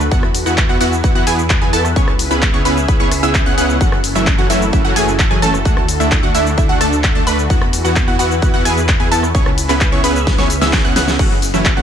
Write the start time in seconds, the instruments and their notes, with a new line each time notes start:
Already playing: analog synth pad F#4
0.00 cabasa
0.11 detuned saw bass E2, supersaw synth B3 E4 F#4, analog synth pad E4 B4, synth pluck F#5, kick, cabasa
0.23 cross-stick
0.35 open hi-hat, cabasa
0.46 detuned saw bass E2, supersaw synth B3 E4 F#4, synth pluck F#5, cabasa
0.58 kick, clap, cabasa
0.69 detuned saw bass E2, supersaw synth B3 E4 F#4, synth pluck F#5
0.80 detuned saw bass E2, supersaw synth B3 E4 F#4, synth pluck F#5, open hi-hat, cabasa
0.93 cabasa
1.04 detuned saw bass E2, supersaw synth B3 E4 F#4, synth pluck F#5, kick, cabasa
1.15 detuned saw bass E2, supersaw synth B3 E4 F#4, synth pluck F#5
1.27 detuned saw bass E2, supersaw synth B3 E4 G#4, synth pluck G#5, open hi-hat, cabasa
1.39 cabasa
1.50 kick, clap, cabasa
1.62 detuned saw bass E2, supersaw synth B3 E4 G#4, synth pluck G#5
1.73 detuned saw bass E2, supersaw synth B3 E4 A4, synth pluck A5, open hi-hat, cabasa
1.85 cross-stick, cabasa
1.96 detuned saw bass C#2, supersaw synth B3 C#4 E4 G#4 C#5, analog synth pad C#4 G#4 E5, synth pluck C#6, kick, cabasa
2.08 cross-stick
2.19 open hi-hat, cabasa
2.31 detuned saw bass C#2, supersaw synth B3 C#4 E4 G#4 B4, synth pluck B5, cabasa
2.42 kick, clap, cabasa
2.54 detuned saw bass C#2, supersaw synth B3 C#4 E4 G#4 C#5, synth pluck C#6
2.65 detuned saw bass C#2, supersaw synth B3 C#4 E4 G#4 B4, synth pluck B5, open hi-hat, cabasa
2.77 cabasa
2.88 detuned saw bass C#2, supersaw synth B3 C#4 E4 G#4 B4, synth pluck B5, kick, cabasa
3.00 detuned saw bass C#2, supersaw synth B3 C#4 E4 G#4 C#5, synth pluck C#6
3.11 cross-stick, open hi-hat, cabasa
3.23 detuned saw bass C#2, supersaw synth B3 C#4 E4 G#4 E5, synth pluck E6, cabasa
3.35 kick, clap, cabasa
3.46 detuned saw bass C#2, supersaw synth B3 C#4 E4 G#4 F#5, synth pluck F#6
3.58 detuned saw bass C#2, supersaw synth B3 C#4 E4 G#4 F#5, synth pluck F#6, open hi-hat, cabasa
3.70 cabasa
3.81 detuned saw bass F#1, supersaw synth E3 F#3 A3 C#4 F#4, analog synth pad E4 F#4 A4, synth pluck F#5, kick, cabasa
3.92 cross-stick
4.04 open hi-hat, cabasa
4.15 detuned saw bass F#1, supersaw synth E3 F#3 A3 C#4 E4, synth pluck E5, cabasa
4.27 kick, clap, cabasa
4.38 detuned saw bass F#1, supersaw synth E3 F#3 A3 C#4 F#4, synth pluck F#5
4.50 detuned saw bass F#1, supersaw synth E3 F#3 A3 C#4 E4, synth pluck E5, open hi-hat, cabasa
4.62 cabasa
4.73 detuned saw bass F#1, supersaw synth E3 F#3 A3 C#4 E4, synth pluck E5, kick, cabasa
4.85 detuned saw bass F#1, supersaw synth E3 F#3 A3 C#4 F#4, synth pluck F#5
4.96 detuned saw bass F#1, supersaw synth E3 F#3 A3 C#4 G#4, synth pluck G#5, open hi-hat, cabasa
5.08 cabasa
5.19 kick, clap, cabasa
5.31 detuned saw bass F#2, supersaw synth E3 F#3 A3 C#4 G#4, synth pluck G#5
5.42 detuned saw bass F#1, supersaw synth E3 F#3 A3 C#4 A4, synth pluck A5, open hi-hat, cabasa
5.54 cross-stick, cabasa
5.65 detuned saw bass D2, supersaw synth A3 D4 F#4, analog synth pad D4 F#4, synth pluck F#5, kick, cabasa
5.77 cross-stick
5.88 open hi-hat, cabasa
6.00 detuned saw bass D2, supersaw synth A3 D4 E4, synth pluck E5, cabasa
6.12 kick, clap, cabasa
6.23 detuned saw bass D2, supersaw synth A3 D4 F#4, synth pluck F#5
6.35 detuned saw bass D2, supersaw synth A3 D4 E4, synth pluck E5, open hi-hat, cabasa
6.47 cabasa
6.58 detuned saw bass D2, supersaw synth A3 D4 E4, synth pluck E5, kick, cabasa
6.69 detuned saw bass D2, supersaw synth A3 D4 F#4, synth pluck F#5
6.81 detuned saw bass D2, supersaw synth A3 D4 A4, synth pluck A5, cross-stick, open hi-hat, cabasa
6.93 cabasa
7.04 kick, clap, cabasa
7.15 detuned saw bass D2, supersaw synth A3 D4 A4, synth pluck A5
7.27 detuned saw bass D2, supersaw synth A3 D4 B4, synth pluck B5, open hi-hat, cabasa
7.39 cabasa
7.50 detuned saw bass E2, supersaw synth B3 E4 F#4, analog synth pad E4 B4, synth pluck F#5, kick, cabasa
7.61 cross-stick
7.73 open hi-hat, cabasa
7.85 detuned saw bass E2, supersaw synth B3 E4 F#4, synth pluck F#5, cabasa
7.96 kick, clap, cabasa
8.08 detuned saw bass E2, supersaw synth B3 E4 F#4, synth pluck F#5
8.19 detuned saw bass E2, supersaw synth B3 E4 F#4, synth pluck F#5, open hi-hat, cabasa
8.31 cabasa
8.42 detuned saw bass E2, supersaw synth B3 E4 F#4, synth pluck F#5, kick, cabasa
8.54 detuned saw bass E2, supersaw synth B3 E4 F#4, synth pluck F#5
8.65 detuned saw bass E2, supersaw synth B3 E4 G#4, synth pluck G#5, open hi-hat, cabasa
8.78 cabasa
8.89 kick, clap, cabasa
9.00 detuned saw bass E2, supersaw synth B3 E4 G#4, synth pluck G#5
9.11 detuned saw bass E2, supersaw synth B3 E4 A4, synth pluck A5, open hi-hat, cabasa
9.23 cross-stick, cabasa
9.35 detuned saw bass C#2, supersaw synth B3 C#4 E4 G#4 C#5, analog synth pad C#4 G#4 B4 E5, synth pluck C#6, kick, cabasa
9.46 cross-stick
9.58 open hi-hat, cabasa
9.69 detuned saw bass C#2, supersaw synth B3 C#4 E4 G#4 B4, synth pluck B5, clap, open hi-hat, cabasa
9.81 kick, clap, cabasa
9.92 detuned saw bass C#2, supersaw synth B3 C#4 E4 G#4 C#5, synth pluck C#6
10.04 detuned saw bass C#2, supersaw synth B3 C#4 E4 G#4 B4, synth pluck B5, open hi-hat, cabasa
10.16 cabasa
10.27 detuned saw bass C#2, supersaw synth B3 C#4 E4 G#4 B4, synth pluck B5, kick, snare, cabasa
10.38 detuned saw bass C#2, supersaw synth B3 C#4 E4 G#4 C#5, synth pluck C#6, snare
10.50 open hi-hat, cabasa
10.61 detuned saw bass C#2, supersaw synth B3 C#4 E4 G#4 E5, synth pluck E6, snare, cabasa
10.73 kick, snare, clap, cabasa
10.84 detuned saw bass C#2, supersaw synth B3 C#4 E4 G#4 F#5, synth pluck F#6
10.96 detuned saw bass C#2, supersaw synth B3 C#4 E4 G#4 F#5, synth pluck F#6, snare, open hi-hat, cabasa
11.08 snare, cabasa
11.19 detuned saw bass F#1, supersaw synth E3 F#3 A3 C#4 F#4, synth pluck F#5, kick, crash, cabasa
11.42 open hi-hat, cabasa
11.54 detuned saw bass F#1, supersaw synth E3 F#3 A3 C#4 E4, synth pluck E5, cabasa
11.65 kick, clap, cabasa
11.77 detuned saw bass F#1, supersaw synth E3 F#3 A3 C#4 F#4, synth pluck F#5